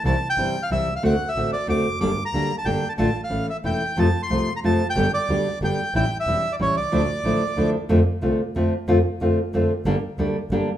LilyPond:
<<
  \new Staff \with { instrumentName = "Bandoneon" } { \time 3/4 \key d \minor \tempo 4 = 184 a''8. g''4 f''16 e''8. f''16 | fis''8. e''8. d''8 d'''4 | d'''8. bes''4 a''16 g''8. a''16 | a''8. f''8. e''8 g''4 |
a''8. c'''4 bes''16 a''8. g''16~ | g''8 d''4. g''4 | g''8. e''4 d''16 cis''8 d''8~ | d''2~ d''8 r8 |
\key f \major r2. | r2. | r2. | }
  \new Staff \with { instrumentName = "Nylon-string guitar" } { \time 3/4 \key d \minor <c e g c' e'>8 r8 <c e g c' e'>8 r8 <c e g c' e'>8 r8 | <d a c' fis'>8 r8 <d a c' fis'>8 r8 <d a c' fis'>8 r8 | <d g bes d' g'>8 r8 <d g bes d' g'>8 r8 <d g bes d' g'>8 r8 | <d a d' f'>8 r8 <e a cis' e'>8 r8 <e a cis' e'>8 r8 |
<c f a c' f'>8 r8 <c f a c' f'>8 r8 <c f a c' f'>8 r8 | <d g b d' g'>8 r8 <d g b d' g'>8 r8 <d g b d' g'>8 r8 | <e g cis' e'>8 r8 <e g cis' e'>8 r8 <e g cis' e'>8 r8 | <d f a d' e'>8 r8 <d f a d' e'>8 r8 <d f a d' e'>8 r8 |
\key f \major <d a c' f'>8 r8 <d a c' f'>8 r8 <d a c' f'>8 r8 | <d a c' f'>8 r8 <d a c' f'>8 r8 <d a c' f'>8 r8 | <d g bes d' g'>8 r8 <d g bes d' g'>8 r8 <d g bes d' g'>8 r8 | }
  \new Staff \with { instrumentName = "Double bass" } { \clef bass \time 3/4 \key d \minor c,8 r8 g,,8 r8 c,8 c,8 | d,8 r8 a,,8 r8 d,8 f,,8 | g,,8 r8 d,8 r8 g,,8 r8 | a,,8 r8 a,,8 r8 e,,8 r8 |
f,8 r8 c,8 r8 f,8 r8 | g,,8 r8 d,8 r8 g,,8 r8 | a,,8 r8 e,,8 r8 a,,8 c,8 | d,8 r8 a,,8 r8 d,8 r8 |
\key f \major f,8 r8 c,8 r8 f,8 r8 | f,8 r8 f,8 r8 f,8 r8 | g,,8 r8 d,8 r8 g,,8 r8 | }
>>